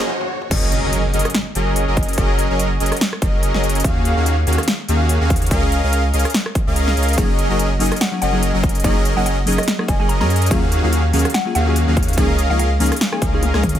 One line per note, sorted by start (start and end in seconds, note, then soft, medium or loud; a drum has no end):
0.00 snare medium
0.00 swell medium
0.09 high tom medium
0.21 high tom medium
0.42 mid tom medium
0.51 0.81 F#1 medium
0.51 0.81 F#3 loud
0.51 0.81 C#4 medium
0.51 0.81 G#4 medium
0.51 0.81 A#4 medium
0.51 0.81 D#5 loud
0.51 kick loud
0.51 closed hi-hat medium
0.51 crash loud
0.51 impact medium
0.72 closed hi-hat medium
0.83 1.12 F#1 medium
0.83 1.03 F#3 medium
0.83 1.03 C#4 medium
0.83 1.03 G#4 medium
0.83 1.03 A#4 medium
0.83 1.03 D#5 medium
0.93 closed hi-hat medium
1.14 1.25 F#1 loud
1.14 1.27 F#3 medium
1.14 1.27 C#4 medium
1.14 1.27 G#4 medium
1.14 1.27 A#4 medium
1.14 1.27 D#5 medium
1.14 closed hi-hat medium
1.19 closed hi-hat medium
1.25 cross-stick medium
1.25 closed hi-hat medium
1.30 closed hi-hat medium
1.34 snare loud
1.34 closed hi-hat medium
1.55 1.85 F#1 loud
1.55 1.85 F#3 medium
1.55 1.85 C#4 medium
1.55 1.85 G#4 medium
1.55 1.85 A#4 medium
1.55 1.85 D#5 medium
1.55 closed hi-hat medium
1.76 closed hi-hat medium
1.88 2.16 F#1 medium
1.88 2.16 F#3 medium
1.88 2.16 C#4 medium
1.88 2.16 G#4 medium
1.88 2.16 A#4 medium
1.88 2.16 D#5 medium
1.97 kick loud
1.97 closed hi-hat soft
2.03 closed hi-hat medium
2.09 closed hi-hat soft
2.13 closed hi-hat medium
2.18 2.48 F#1 medium
2.18 2.47 F#3 medium
2.18 2.47 C#4 medium
2.18 2.47 G#4 medium
2.18 2.47 A#4 medium
2.18 2.47 D#5 loud
2.18 kick loud
2.18 closed hi-hat medium
2.39 closed hi-hat medium
2.50 2.78 F#1 medium
2.50 2.69 F#3 medium
2.50 2.69 C#4 medium
2.50 2.69 G#4 medium
2.50 2.69 A#4 medium
2.50 2.69 D#5 medium
2.50 2.69 D#5 loud
2.59 closed hi-hat medium
2.80 2.91 F#1 loud
2.80 2.93 F#3 medium
2.80 2.93 C#4 medium
2.80 2.93 G#4 medium
2.80 2.93 A#4 medium
2.80 2.93 D#5 medium
2.80 closed hi-hat medium
2.86 closed hi-hat medium
2.92 cross-stick medium
2.92 closed hi-hat medium
2.97 closed hi-hat medium
3.01 snare loud
3.01 closed hi-hat medium
3.13 cross-stick medium
3.22 3.52 F#1 loud
3.22 3.52 F#3 medium
3.22 3.52 C#4 medium
3.22 3.52 G#4 medium
3.22 3.51 A#4 medium
3.22 3.52 D#5 medium
3.22 kick loud
3.22 closed hi-hat medium
3.43 closed hi-hat medium
3.54 3.83 F#1 loud
3.54 3.82 F#3 medium
3.54 3.82 C#4 medium
3.54 3.82 G#4 medium
3.54 3.82 A#4 medium
3.54 3.82 D#5 medium
3.54 snare soft
3.64 closed hi-hat medium
3.69 closed hi-hat medium
3.75 closed hi-hat soft
3.80 closed hi-hat medium
3.84 4.15 D#2 medium
3.84 4.14 D#3 loud
3.84 4.14 A#3 medium
3.84 4.14 C#4 medium
3.84 4.14 F#4 medium
3.84 4.14 G#4 medium
3.84 4.14 F5 loud
3.84 kick loud
3.84 closed hi-hat medium
4.05 closed hi-hat medium
4.17 4.45 D#2 medium
4.17 4.36 D#3 medium
4.17 4.36 A#3 medium
4.17 4.36 C#4 medium
4.17 4.36 F#4 medium
4.17 4.36 G#4 medium
4.17 4.36 F5 medium
4.26 closed hi-hat medium
4.47 4.58 D#2 loud
4.47 4.60 D#3 medium
4.47 4.60 A#3 medium
4.47 4.60 C#4 medium
4.47 4.60 F#4 medium
4.47 4.60 G#4 medium
4.47 4.60 F5 medium
4.47 closed hi-hat soft
4.53 closed hi-hat medium
4.58 cross-stick medium
4.58 closed hi-hat soft
4.63 closed hi-hat medium
4.68 snare loud
4.68 closed hi-hat medium
4.89 5.19 D#2 loud
4.89 5.18 D#3 medium
4.89 5.18 A#3 medium
4.89 5.18 C#4 medium
4.89 5.18 F#4 medium
4.89 5.18 G#4 medium
4.89 5.18 F5 medium
4.89 closed hi-hat medium
5.09 closed hi-hat medium
5.21 5.49 D#2 loud
5.21 5.49 D#3 medium
5.21 5.49 A#3 medium
5.21 5.49 C#4 medium
5.21 5.49 F#4 medium
5.21 5.49 G#4 medium
5.21 5.49 F5 medium
5.30 kick loud
5.30 closed hi-hat soft
5.36 closed hi-hat medium
5.42 closed hi-hat soft
5.46 closed hi-hat medium
5.51 5.81 C#2 loud
5.51 5.81 C#4 loud
5.51 5.81 G#4 medium
5.51 5.81 A#4 medium
5.51 5.81 D#5 medium
5.51 5.81 F5 loud
5.51 kick loud
5.51 closed hi-hat medium
5.72 closed hi-hat medium
5.83 6.12 C#2 loud
5.83 6.03 C#4 medium
5.83 6.03 G#4 medium
5.83 6.03 A#4 medium
5.83 6.03 D#5 medium
5.83 6.03 F5 medium
5.93 closed hi-hat medium
6.14 6.25 C#2 loud
6.14 6.27 C#4 medium
6.14 6.27 G#4 medium
6.14 6.27 A#4 medium
6.14 6.27 D#5 medium
6.14 6.27 F5 medium
6.14 closed hi-hat soft
6.19 closed hi-hat medium
6.25 cross-stick medium
6.25 closed hi-hat soft
6.30 closed hi-hat medium
6.34 snare loud
6.34 closed hi-hat medium
6.46 cross-stick medium
6.55 kick loud
6.55 closed hi-hat medium
6.67 6.95 C#2 loud
6.67 6.95 C#4 loud
6.67 6.95 G#4 medium
6.67 6.95 A#4 medium
6.67 6.95 D#5 medium
6.67 6.95 F5 loud
6.76 closed hi-hat medium
6.88 snare soft
6.97 7.16 C#2 medium
6.97 7.16 C#4 medium
6.97 7.16 G#4 medium
6.97 7.16 A#4 medium
6.97 7.16 D#5 medium
6.97 7.16 F5 loud
6.97 7.16 F5 medium
6.97 closed hi-hat soft
7.03 closed hi-hat medium
7.08 closed hi-hat soft
7.13 7.27 F#3 loud
7.13 closed hi-hat medium
7.17 7.48 F#1 loud
7.17 7.47 F#3 medium
7.17 7.27 A#3 medium
7.17 7.47 C#4 medium
7.17 7.28 C#4 medium
7.17 7.28 D#4 medium
7.17 7.47 G#4 medium
7.17 7.28 G#4 loud
7.17 7.47 A#4 medium
7.17 7.47 D#5 loud
7.17 kick loud
7.17 closed hi-hat medium
7.17 ride soft
7.39 closed hi-hat medium
7.49 7.79 F#1 loud
7.49 7.58 F#3 medium
7.49 7.69 F#3 medium
7.49 7.58 A#3 medium
7.49 7.69 C#4 medium
7.49 7.58 C#4 medium
7.49 7.58 D#4 medium
7.49 7.59 F#4 medium
7.49 7.69 G#4 medium
7.49 7.69 A#4 medium
7.49 7.69 D#5 loud
7.49 7.69 D#5 medium
7.59 closed hi-hat medium
7.79 7.91 F#1 loud
7.79 7.90 F#3 loud
7.79 7.93 F#3 medium
7.79 7.90 A#3 medium
7.79 7.90 C#4 medium
7.79 7.93 C#4 medium
7.79 7.90 D#4 medium
7.79 7.93 G#4 medium
7.79 7.91 G#4 loud
7.79 7.93 A#4 medium
7.79 7.93 D#5 medium
7.79 open hi-hat loud
7.86 closed hi-hat medium
7.92 cross-stick medium
7.92 closed hi-hat soft
7.96 closed hi-hat medium
8.01 8.16 F#5 medium
8.01 snare loud
8.01 closed hi-hat medium
8.01 ride soft
8.12 8.20 F#3 medium
8.12 8.20 A#3 medium
8.12 8.20 C#4 medium
8.12 8.21 D#4 medium
8.12 8.21 G#4 medium
8.22 8.52 F#1 loud
8.22 8.51 F#3 medium
8.22 8.51 C#4 medium
8.22 8.51 G#4 medium
8.22 8.51 A#4 medium
8.22 8.51 D#5 medium
8.22 8.52 D#5 medium
8.22 8.37 F#5 medium
8.22 closed hi-hat medium
8.32 8.41 F#3 loud
8.32 8.41 A#3 medium
8.32 8.41 C#4 medium
8.32 8.42 D#4 medium
8.32 8.42 G#4 loud
8.43 closed hi-hat medium
8.53 8.83 F#1 loud
8.53 8.67 F#3 medium
8.53 8.82 F#3 medium
8.53 8.67 A#3 medium
8.53 8.68 C#4 medium
8.53 8.82 C#4 medium
8.53 8.68 D#4 medium
8.53 8.82 G#4 medium
8.53 8.68 G#4 medium
8.53 8.82 A#4 medium
8.53 8.82 D#5 medium
8.64 kick loud
8.64 closed hi-hat soft
8.69 closed hi-hat medium
8.75 closed hi-hat soft
8.80 8.94 F#3 loud
8.80 closed hi-hat medium
8.84 9.14 F#1 medium
8.84 9.14 F#3 loud
8.84 8.94 A#3 medium
8.84 8.94 C#4 medium
8.84 9.14 C#4 medium
8.84 8.94 D#4 medium
8.84 9.14 G#4 medium
8.84 8.95 G#4 loud
8.84 9.14 A#4 medium
8.84 9.14 D#5 loud
8.84 kick loud
8.84 closed hi-hat medium
8.84 ride medium
9.05 closed hi-hat medium
9.16 9.45 F#1 loud
9.16 9.24 F#3 medium
9.16 9.36 F#3 medium
9.16 9.24 A#3 medium
9.16 9.36 C#4 medium
9.16 9.25 C#4 medium
9.16 9.25 D#4 medium
9.16 9.25 F#4 medium
9.16 9.36 G#4 medium
9.16 9.36 A#4 medium
9.16 9.36 D#5 medium
9.16 9.23 F#5 medium
9.26 9.33 F#5 medium
9.26 closed hi-hat medium
9.46 9.58 F#1 loud
9.46 9.56 F#3 loud
9.46 9.60 F#3 medium
9.46 9.56 A#3 medium
9.46 9.57 C#4 medium
9.46 9.60 C#4 medium
9.46 9.57 D#4 medium
9.46 9.60 G#4 medium
9.46 9.57 G#4 loud
9.46 9.60 A#4 medium
9.46 9.60 D#5 medium
9.46 open hi-hat loud
9.53 closed hi-hat medium
9.58 9.72 D#5 medium
9.58 cross-stick medium
9.58 closed hi-hat medium
9.63 closed hi-hat medium
9.68 snare loud
9.68 closed hi-hat medium
9.68 ride soft
9.78 9.87 F#3 medium
9.78 9.87 A#3 medium
9.78 9.87 C#4 medium
9.78 9.87 D#4 medium
9.78 9.88 G#4 medium
9.78 cross-stick medium
9.88 10.23 F#1 loud
9.88 10.18 F#3 medium
9.88 10.18 C#4 medium
9.88 10.18 G#4 medium
9.88 10.18 A#4 medium
9.88 10.18 D#5 medium
9.88 9.96 G#5 medium
9.88 kick loud
9.88 closed hi-hat medium
9.99 10.08 F#3 loud
9.99 10.08 A#3 medium
9.99 10.08 C#4 medium
9.99 10.08 D#4 medium
9.99 10.08 G#4 loud
9.99 10.06 G#5 medium
10.09 10.17 A#5 medium
10.09 closed hi-hat medium
10.20 10.49 F#2 loud
10.20 10.34 F#3 medium
10.20 10.49 F#3 medium
10.20 10.34 A#3 medium
10.20 10.49 C#4 medium
10.20 10.34 C#4 medium
10.20 10.35 D#4 medium
10.20 10.49 G#4 medium
10.20 10.35 G#4 medium
10.20 10.49 A#4 medium
10.20 10.49 D#5 medium
10.20 10.27 A#5 medium
10.20 snare soft
10.30 closed hi-hat soft
10.36 closed hi-hat medium
10.42 closed hi-hat soft
10.46 10.60 F#3 loud
10.46 closed hi-hat medium
10.51 10.81 D#2 medium
10.51 10.81 D#3 medium
10.51 10.61 A#3 medium
10.51 10.81 A#3 medium
10.51 10.81 C#4 medium
10.51 10.61 C#4 medium
10.51 10.61 F4 medium
10.51 10.81 F#4 medium
10.51 10.81 G#4 medium
10.51 10.61 G#4 loud
10.51 10.81 F5 loud
10.51 kick loud
10.51 closed hi-hat medium
10.51 ride soft
10.72 closed hi-hat medium
10.82 11.12 D#2 loud
10.82 11.03 D#3 medium
10.82 10.91 F#3 medium
10.82 10.91 A#3 medium
10.82 11.03 A#3 medium
10.82 11.03 C#4 medium
10.82 10.91 C#4 medium
10.82 10.92 F4 medium
10.82 11.03 F#4 medium
10.82 11.03 G#4 medium
10.82 10.92 G#4 medium
10.82 11.03 F5 medium
10.93 closed hi-hat medium
11.12 11.25 D#2 loud
11.12 11.27 D#3 medium
11.12 11.23 F#3 medium
11.12 11.23 A#3 medium
11.12 11.27 A#3 medium
11.12 11.27 C#4 medium
11.12 11.23 C#4 medium
11.12 11.24 F4 medium
11.12 11.27 F#4 medium
11.12 11.27 G#4 medium
11.12 11.24 G#4 loud
11.12 11.27 F5 medium
11.12 open hi-hat loud
11.19 closed hi-hat medium
11.25 cross-stick medium
11.25 closed hi-hat medium
11.30 closed hi-hat medium
11.34 11.50 F#5 loud
11.34 snare loud
11.34 closed hi-hat medium
11.34 ride soft
11.45 11.53 F#3 medium
11.45 11.54 A#3 medium
11.45 11.54 C#4 medium
11.45 11.54 F4 medium
11.45 11.54 G#4 loud
11.55 11.85 D#2 loud
11.55 11.85 D#3 medium
11.55 11.85 A#3 medium
11.55 11.85 C#4 medium
11.55 11.85 F#4 medium
11.55 11.85 G#4 medium
11.55 11.85 F5 medium
11.55 11.70 F#5 medium
11.55 closed hi-hat medium
11.66 11.74 F#3 loud
11.66 11.74 A#3 medium
11.66 11.75 C#4 loud
11.66 11.75 F4 medium
11.66 11.75 G#4 loud
11.76 closed hi-hat medium
11.87 12.19 D#2 loud
11.87 12.15 D#3 medium
11.87 12.01 F#3 medium
11.87 12.01 A#3 medium
11.87 12.15 A#3 medium
11.87 12.15 C#4 medium
11.87 12.01 C#4 medium
11.87 12.01 F4 medium
11.87 12.15 F#4 medium
11.87 12.15 G#4 medium
11.87 12.02 G#4 loud
11.87 12.15 F5 medium
11.97 kick loud
11.97 closed hi-hat soft
12.03 closed hi-hat medium
12.08 closed hi-hat medium
12.13 12.27 F3 loud
12.13 12.27 A#3 loud
12.13 closed hi-hat medium
12.18 12.48 C#2 loud
12.18 12.47 C#4 loud
12.18 12.27 C#4 medium
12.18 12.28 D#4 medium
12.18 12.47 G#4 medium
12.18 12.28 G#4 loud
12.18 12.47 A#4 medium
12.18 12.47 D#5 medium
12.18 12.47 F5 loud
12.18 kick loud
12.18 closed hi-hat medium
12.18 ride soft
12.39 closed hi-hat medium
12.49 12.78 C#2 loud
12.49 12.57 F3 medium
12.49 12.58 A#3 medium
12.49 12.69 C#4 medium
12.49 12.58 C#4 medium
12.49 12.58 D#4 medium
12.49 12.58 F4 medium
12.49 12.69 G#4 medium
12.49 12.69 A#4 medium
12.49 12.69 D#5 medium
12.49 12.69 F5 medium
12.49 12.56 F5 medium
12.49 12.69 F5 medium
12.59 12.67 F5 medium
12.59 closed hi-hat medium
12.79 12.91 C#2 loud
12.79 12.90 F3 loud
12.79 12.90 A#3 medium
12.79 12.93 C#4 medium
12.79 12.90 C#4 medium
12.79 12.90 D#4 medium
12.79 12.93 G#4 medium
12.79 12.91 G#4 loud
12.79 12.93 A#4 medium
12.79 12.93 D#5 medium
12.79 12.93 F5 medium
12.79 open hi-hat loud
12.86 closed hi-hat medium
12.92 cross-stick medium
12.92 closed hi-hat medium
12.96 closed hi-hat medium
13.01 snare loud
13.01 closed hi-hat medium
13.01 ride soft
13.12 13.20 F3 medium
13.12 13.20 A#3 medium
13.12 13.21 C#4 medium
13.12 13.21 D#4 medium
13.12 13.21 G#4 medium
13.12 13.43 G#5 medium
13.12 cross-stick medium
13.22 13.52 C#2 loud
13.22 13.51 C#4 medium
13.22 13.51 G#4 medium
13.22 13.51 A#4 medium
13.22 13.51 D#5 medium
13.22 13.51 F5 medium
13.22 13.52 F5 medium
13.22 kick loud
13.22 closed hi-hat medium
13.32 13.41 F3 loud
13.32 13.41 A#3 medium
13.32 13.41 C#4 medium
13.32 13.42 D#4 medium
13.32 13.42 G#4 loud
13.43 closed hi-hat medium
13.43 high tom medium
13.53 13.79 C#2 loud
13.53 13.67 F3 medium
13.53 13.68 A#3 medium
13.53 13.79 C#4 medium
13.53 13.68 C#4 medium
13.53 13.68 D#4 medium
13.53 13.79 G#4 medium
13.53 13.68 G#4 medium
13.53 13.79 A#4 medium
13.53 13.79 D#5 medium
13.53 13.79 F5 medium
13.53 cross-stick medium
13.53 snare soft
13.53 high tom medium
13.63 kick medium
13.63 closed hi-hat medium
13.63 mid tom medium
13.69 closed hi-hat medium
13.75 closed hi-hat medium
13.75 mid tom medium